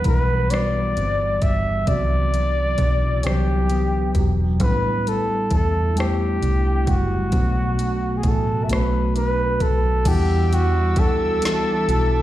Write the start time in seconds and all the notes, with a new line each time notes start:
Already playing: E3 G3 B3 D4 F#5
0.04 B1 E4 B4, kick, closed hi-hat
0.29 F#4
0.50 E3 G3 B3 D4 F#4 D5, cross-stick, closed hi-hat
0.97 G1 C4, closed hi-hat
1.20 D4
1.42 G1 G3 E5, kick, closed hi-hat
1.86 C2 C3 D3 F#3 B3 D4 F#4 D5, kick, closed hi-hat
1.92 E3
2.33 F#3, closed hi-hat
2.78 B1 D4, kick, closed hi-hat
3.03 E4
3.23 C2 D3 F#3 B3 D4 G4 G5, cross-stick, closed hi-hat
3.30 E3
3.70 B3, closed hi-hat
4.15 E1 F#3, kick, closed hi-hat
4.59 A1 A2 G3 A3 B3 C#4 E4 B4, kick, closed hi-hat
4.68 D4
5.05 G3 A4, closed hi-hat
5.50 E2 E4 A4, kick, closed hi-hat
5.95 G3 A3 B3 D4 E4 G4, closed hi-hat
6.00 cross-stick
6.42 C2 D4, closed hi-hat
6.87 F#1 G3 F#4, kick, closed hi-hat
7.30 B1 B2 F#3 A3 B3 D4 F#4, kick, closed hi-hat
7.79 A3, closed hi-hat
8.17 G#4
8.23 A1 E4, kick, closed hi-hat
8.28 A4
8.47 F#4
8.64 F#3 E5
8.68 B1 A3 B3 D4 F#4 B4, closed hi-hat
8.73 cross-stick
9.16 D4 B4, closed hi-hat
9.60 B1 A3 A4, kick, closed hi-hat
10.04 E2 E3 G3 B3 D4 E4 F#4 G4 E5 D6 E6, kick, closed hi-hat, crash
10.09 F#5
10.29 D4
10.53 F#4, closed hi-hat
10.75 G3
10.96 D2 D4 A4, kick, closed hi-hat
11.20 F#4
11.42 E3 G3 B3 D4 E4 F#4, snare, closed hi-hat
11.66 D4
11.88 B1 F#4, closed hi-hat
12.11 G3